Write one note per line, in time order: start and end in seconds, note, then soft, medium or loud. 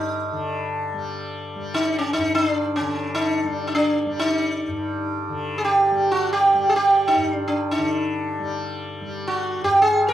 0.00 2.17 G2 soft
0.00 0.31 D3 soft
0.00 0.94 G3 medium
0.00 0.65 D#4 medium
0.32 2.80 D3 medium
0.94 1.56 G3 medium
1.56 3.44 G3 medium
1.74 1.98 D#4 medium
1.98 2.13 C#4 medium
2.13 2.34 D#4 medium
2.17 4.67 G2 soft
2.35 2.47 D#4 medium
2.47 2.75 D4 medium
2.76 3.12 C#4 medium
2.80 5.28 D3 soft
3.15 3.47 D#4 medium
3.44 4.06 G3 medium
3.44 3.66 D4 medium
3.67 3.74 D#4 medium
3.75 4.19 D4 medium
4.06 5.92 G3 medium
4.19 5.19 D#4 medium
4.68 7.15 G2 medium
5.28 7.77 D3 medium
5.58 5.64 G#4 medium
5.65 6.11 G4 medium
5.92 6.55 G3 medium
6.11 6.32 F#4 medium
6.33 6.69 G4 medium
6.55 8.40 G3 medium
6.69 6.76 G#4 medium
6.76 7.08 G4 medium
7.08 7.32 D#4 medium
7.16 9.63 G2 medium
7.32 7.47 D4 medium
7.48 7.71 D4 medium
7.71 8.62 D#4 medium
7.77 10.13 D3 medium
8.40 9.01 G3 medium
9.01 10.13 G3 medium
9.27 9.64 F#4 medium
9.64 10.13 G2 medium
9.64 9.81 G4 medium
9.82 10.10 G#4 medium
10.08 10.13 A#4 medium